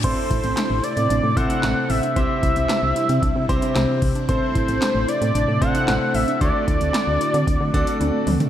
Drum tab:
CC |x---------------|----------------|----------------|----------------|
HH |x-xxx-xxx-xxx-ox|x-xxx-xxx-xxx-ox|x-xxx-xxx-xxx-ox|x-xxx-xxx-xxx-ox|
CP |----x-------x---|----x-------x---|----x-------x---|----x-----------|
SD |----o-------o---|----o-------o---|----o-------o---|----o-----------|
T1 |----------------|----------------|----------------|------------o---|
T2 |----------------|----------------|----------------|--------------o-|
FT |----------------|----------------|----------------|---------------o|
BD |o-o-------o-----|o-o-----o-o---o-|o-o-------o-----|o-o-----o-o-----|